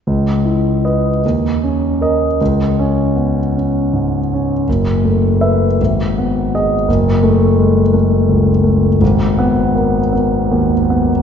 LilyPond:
<<
  \new Staff \with { instrumentName = "Grand piano" } { \time 6/8 \key cis \minor \tempo 4. = 53 r4 dis''8 r4 dis''8 | r8 cis'4 r4. | r4 e''8 r4 dis''8 | r8 a4 r4. |
r8 b4 r4. | }
  \new Staff \with { instrumentName = "Grand piano" } { \time 6/8 \key cis \minor cis,8 e'8 b'8 dis,8 cis'8 ais'8 | cis,4 b8 cis'8 gis,8 cis'8 | fis,,8 a8 b'8 gis,,8 b8 gis'8 | fis,,4 gis8 a8 cis,8 a8 |
gis,,4 ais8 b8 dis,8 b8 | }
>>